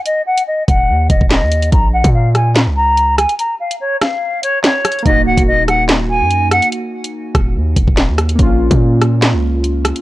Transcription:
<<
  \new Staff \with { instrumentName = "Flute" } { \time 4/4 \key ees \minor \tempo 4 = 144 ees''8 ges''8 ees''8 ges''4 ees''8 ees''4 | bes''8 ges''8 f''8 aes''8 r8 bes''4 aes''8 | bes''8 f''8 des''8 f''4 des''8 des''4 | ees''8 ges''8 ees''8 ges''8 r8 aes''4 ges''8 |
r1 | r1 | }
  \new Staff \with { instrumentName = "Synth keys" } { \time 4/4 \key ees \minor r1 | r1 | r1 | <bes ees' ges'>1~ |
<bes ees' ges'>1 | <bes des' f'>1 | }
  \new Staff \with { instrumentName = "808-style bass" } { \clef bass \time 4/4 \key ees \minor r4. ees,,8 ees,8 ees,,16 ees,,8 ees,8. | bes,,8. bes,4. des,4. r16 | r1 | ees,,8 des,,16 ees,,2 ges,4 r16 |
r4. ees,,8 ees,8 ees,,16 ees,,8 ees,8. | bes,,8. bes,4. des,4. r16 | }
  \new DrumStaff \with { instrumentName = "Drums" } \drummode { \time 4/4 hh8. hh16 r8 <hh bd>8 r8 <hh bd>16 bd16 <hc hh sn>8 hh16 hh16 | <hh bd>8. <hh bd>16 r8 <hh ss>8 <hc hh sn>4 hh8 <hh ss>16 hh16 | hh8. hh16 r8 <hh ss sn>8 r8 hh8 \tuplet 3/2 { <hc hh sn>16 r16 r16 <hh ss>16 hh16 hh16 } | <hh bd>8. <hh bd>16 r8 <hh ss>8 <hc hh sn>4 hh8 <hh ss>16 hh16 |
hh8. hh16 r8 <hh bd ss>8 r8 <hh bd>16 bd16 <hc hh sn>8 <hh ss>16 hh16 | <hh bd>8. <hh bd>16 r8 <hh ss>8 <hc hh sn>4 hh8 <hh ss>16 hh16 | }
>>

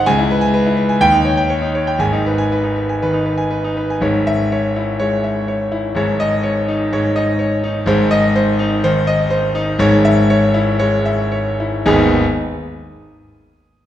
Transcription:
<<
  \new Staff \with { instrumentName = "Grand piano" } { \time 4/4 \key gis \minor \tempo 4 = 122 << { gis''8 r4. g''8 r4. | gis''8 r2. r8 | r8 e''4 r2 r8 | r8 dis''4 r2 r8 |
r8 dis''4 r2 r8 | r8 e''4 r2 r8 | <gis,, dis, gis b dis' gis'>8 r2. r8 | } \\ { r16 e'16 b'16 gis''16 b'16 e'16 b'16 gis''16 r16 dis'16 cis''16 g''16 cis''16 dis'16 cis''16 g''16 | r16 dis'16 b'16 gis''16 b'16 dis'16 b'16 gis''16 b'16 dis'16 b'16 gis''16 b'16 dis'16 b'16 gis''16 | cis''8. r16 cis''8 e'8 cis''8 e''8 cis''8 e'8 | cis''8. r16 cis''8 dis'8 cis''8 dis''8 cis''8 dis'8 |
bis'8. r16 bis'8 dis'8 bis'8 dis''8 bis'8 dis'8 | cis''8. r16 cis''8 e'8 cis''8 e''8 cis''8 e'8 | r1 | } >> }
  \new Staff \with { instrumentName = "Grand piano" } { \clef bass \time 4/4 \key gis \minor cis,2 dis,2 | <gis,, gis,>2 dis8 r4. | <gis,, gis,>2 gis8 r4. | <gis,, gis,>2 gis,8 dis'8 r4 |
<gis,, gis,>2 dis8 r4. | <gis,, gis,>2 gis8 r4. | r1 | }
>>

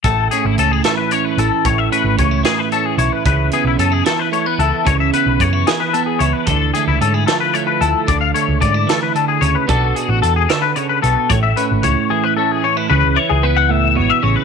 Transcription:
<<
  \new Staff \with { instrumentName = "Clean electric guitar" } { \time 6/8 \key a \major \tempo 4. = 75 a'8 gis'16 e'16 a'16 gis'16 a'16 b'16 cis''16 b'16 a'8 | cis''16 e''16 b'8 cis''8 gis'16 b'16 a'16 gis'16 cis''16 b'16 | b'8 gis'16 e'16 a'16 gis'16 a'16 b'16 cis''16 b'16 a'8 | cis''16 e''16 b'8 cis''8 gis'16 b'16 a'16 gis'16 cis''16 b'16 |
a'8 gis'16 e'16 a'16 gis'16 a'16 b'16 cis''16 b'16 a'8 | d''16 f''16 cis''8 d''8 a'16 b'16 a'16 gis'16 cis''16 b'16 | a'8 gis'16 fis'16 a'16 gis'16 a'16 b'16 cis''16 b'16 a'8 | cis''16 e''16 b'8 cis''8 gis'16 b'16 a'16 gis'16 cis''16 b'16 |
b'8 cis''16 gis'16 b'16 fis''16 e''8 cis''16 e''16 cis''16 b'16 | }
  \new Staff \with { instrumentName = "Clean electric guitar" } { \time 6/8 \key a \major << { r8 cis'8 cis'16 e'8. cis'8 e'8 | r8 cis'8 cis'16 e'8. cis'8 e'8 | r8 b8 cis'16 e'8. a16 b16 e'8 | r8 b8 cis'16 e'8. b8 e'8 |
r8 a8 cis'16 e'8. a8 e'8 | r8 a8 cis'16 e'4.~ e'16 | <d' fis' a'>8 fis'8 a'2 | r8 cis'8 e'4 cis'8 cis'16 e'16 |
r4 b2 | } \\ { a,4. e4. | a,4. e4. | cis4. e4. | cis4. e4. |
d4. f4. | d4. e8 d8 cis8 | b,4. d8 cis8 b,8 | a,4. e4. |
cis8 e4 a,8 b,8 cis8 | } >> }
  \new Staff \with { instrumentName = "Picked electric bass" } { \clef bass \time 6/8 \key a \major a,,8 r16 gis,,16 cis,8 r4 a,,16 r16 | a,,8 r16 gis,,16 cis,8 r4 b,,16 r16 | cis,8 r16 b,,16 fis,8 r4 cis,16 r16 | cis,8 r16 b,,16 fis,8 r4 cis,16 r16 |
d,8 r16 cis,16 gis,8 r4 d,16 r16 | d,8 r16 cis,16 gis,8 r4 d,16 r16 | b,,8 r16 a,,16 e,8 r4 b,,16 r16 | a,,8 r16 gis,,16 cis,16 r4. r16 |
cis,16 cis,16 r16 cis,4~ cis,16 gis,,16 r16 a,,16 r16 | }
  \new DrumStaff \with { instrumentName = "Drums" } \drummode { \time 6/8 <hh bd>8 hh8 hh8 <hh sn>8 hh8 hh8 | <hh bd>8 hh8 <hh bd>8 <hh sn>8 hh8 hh8 | <hh bd>8 hh8 hh8 <hh sn>8 hh8 hh8 | <hh bd>8 hh8 <hh bd>8 <hh sn>8 hh8 hh8 |
<hh bd>8 hh8 hh8 <hh sn>8 hh8 hh8 | <hh bd>8 hh8 <hh bd>8 <hh sn>8 hh8 hh8 | <hh bd>8 hh8 hh8 <hh sn>8 hh8 hh8 | <hh bd>8 hh8 <hh bd>8 r4. |
r4. r4. | }
>>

